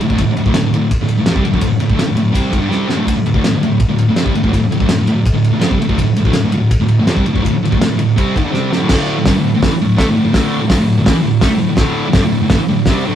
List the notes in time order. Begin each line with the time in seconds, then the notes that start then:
0.01 D2 A2, ride
0.10 D2 A2, kick
0.18 D2 A2, kick, ride
0.31 muted distorted electric guitar stroke
0.37 D2 A2, ride
0.46 D2 A2, kick
0.54 D2 A2, snare, ride
0.66 D2 A2
0.74 D2 A2, ride
0.91 kick, ride
1.02 D2 A2
1.08 ride
1.19 D2 A2
1.26 F2, snare, ride
1.30 C3
1.36 C3 G3, kick
1.45 D2 A2, ride
1.53 D2 A2, kick
1.61 D2 A2, kick, ride
1.72 muted distorted electric guitar stroke
1.80 D2 A2, ride
1.90 D2 A2, kick
1.99 D2 A2, snare, ride
2.07 D2 A2
2.16 D2 A2, ride
2.32 C3 G3 C4, kick, ride
2.51 G#2 D#3, kick, ride
2.60 G2 D3
2.70 C3 G3 C4, snare
2.88 F2 C3, snare
2.95 D2 A2
3.06 D2 A2, kick, ride
3.16 muted distorted electric guitar stroke
3.26 D2 A2, ride
3.34 D2 A2, kick
3.44 D2 A2, snare, ride
3.52 D2 A2
3.62 D2 A2, ride
3.80 kick, ride
3.88 D2 A2
3.99 ride
4.08 D2 A2
4.16 F2 C3, snare, ride
4.24 C3 G3, kick
4.35 D2 A2, ride
4.43 D2 A2, kick
4.52 D2 A2, kick, ride
4.62 muted distorted electric guitar stroke
4.71 D2 A2, ride
4.80 D2 A2, kick
4.89 D2 A2, snare, ride
4.97 D2 A2
5.07 D2 A2, ride
5.26 kick, ride
5.34 D2 A2
5.44 ride
5.51 D2 A2
5.59 F2 C3, snare, ride
5.70 C3 G3, kick
5.80 D2 A2, ride
5.87 D2 A2, kick
5.98 D2 A2, kick, ride
6.07 muted distorted electric guitar stroke
6.16 D2 A2, ride
6.25 D2 A2, kick
6.33 D2 A2, snare, ride
6.44 D2 A2
6.52 D2 A2, ride
6.71 kick, ride
6.80 D2 A2
6.88 ride
7.00 D2 A2
7.07 F2 C3, snare, ride
7.16 C3 G3, kick
7.26 D2 A2, ride
7.35 D2 A2, kick
7.43 D2 A2, kick, ride
7.54 muted distorted electric guitar stroke
7.63 D2 A2, ride
7.71 D2 A2, kick
7.79 D2 A2, snare, ride
7.89 D2 A2
7.98 D2 A2, ride
8.17 C3 G3 C4, kick, ride
8.36 G#2 D#3, kick, ride
8.43 G2 D3
8.52 C3 G3 C4, snare
8.71 F2 C3, snare
8.80 D2 A2
8.89 D2 A2 D3, kick, snare, crash
9.19 D2 A2
9.26 G2 D3, kick, snare, open hi-hat
9.37 D2 A2
9.55 D2 A2
9.62 A2 E3, kick, snare, open hi-hat
9.72 muted distorted electric guitar stroke
9.82 D2 A2
9.97 D3 A3, kick, snare, open hi-hat
10.08 D2 A2
10.16 D2 A2
10.25 D2 A2
10.33 D2 A2 D3, kick, snare, open hi-hat
10.61 D2 A2
10.70 G2 D3, kick, snare, open hi-hat
10.79 D2 A2
10.98 D2 A2
11.06 A2 E3, kick, snare, open hi-hat
11.15 muted distorted electric guitar stroke
11.22 D2 A2
11.41 D3 A3, kick, snare, open hi-hat
11.50 D2 A2
11.58 D2 A2
11.69 D2 A2
11.77 D2 A2 D3, kick, snare, open hi-hat
12.07 D2 A2
12.13 G2 D3, kick, snare, open hi-hat
12.24 D2 A2
12.42 D2 A2
12.49 A2 E3, kick, snare, open hi-hat
12.61 muted distorted electric guitar stroke
12.69 D2 A2
12.86 C3 G3, kick, snare, open hi-hat
12.90 C4
13.05 D2 A2 D3